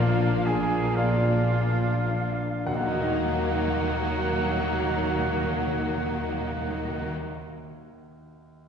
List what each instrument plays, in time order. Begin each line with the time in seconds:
Already playing: double bass section A#1, cello section A#2, grand piano F3 A#3 D4 A#4 D5 F5 A#5, viola section F3, bassoon A#3, french horn section A#3 D4, violin section A#3 D4, clarinet D4, oboe F4, flute F5
0.00 grand piano F4
0.45 grand piano D4 G#4 G#5, oboe G#4, flute G#5
0.95 grand piano A#3 F4 D5 F5, french horn section A#3 D4, bassoon D4, oboe F4, clarinet F4, flute F5
1.51 grand piano F4
2.09 grand piano D4
2.66 grand piano D#2 F#4 F#5, double bass section D#2, cello section D#3, timpani D#3, viola section F#3, bassoon A#3, french horn section A#3 D#4, violin section A#3 D#4, clarinet D#4, oboe F#5, flute F#5
2.73 grand piano D#3, timpani D#3
2.80 timpani D#3, grand piano A#3
2.87 grand piano D#4
2.94 timpani D#3, grand piano F#4
3.01 timpani D#3, grand piano D#5
3.10 timpani D#3
3.18 timpani D#3
3.24 timpani D#3
3.32 timpani D#3
3.39 timpani D#3
3.47 timpani D#3
3.54 timpani D#3
3.61 timpani D#3
3.68 timpani D#3
3.75 timpani D#3
3.83 timpani D#3
3.90 timpani D#3
3.98 timpani D#3
4.04 timpani D#3
4.11 timpani D#3
4.18 timpani D#3
4.25 timpani D#3
4.32 timpani D#3
4.39 timpani D#3
4.46 timpani D#3
4.53 timpani D#3
4.61 timpani D#3
4.68 timpani D#3
4.75 timpani D#3
4.82 timpani D#3
4.89 timpani D#3
4.97 timpani D#3
5.04 timpani D#3
5.11 timpani D#3
5.18 timpani D#3
5.25 timpani D#3
5.32 timpani D#3
5.39 timpani D#3
5.46 timpani D#3
5.53 timpani D#3
5.60 timpani D#3
5.68 timpani D#3
5.75 timpani D#3
5.83 timpani D#3
5.90 timpani D#3
5.97 timpani D#3
6.05 timpani D#3
6.11 timpani D#3
6.18 timpani D#3
6.25 timpani D#3
6.33 timpani D#3
6.40 timpani D#3
6.48 timpani D#3
6.55 timpani D#3
6.62 timpani D#3
6.69 timpani D#3
6.77 timpani D#3
6.84 timpani D#3
6.91 timpani D#3
6.98 timpani D#3
7.05 timpani D#3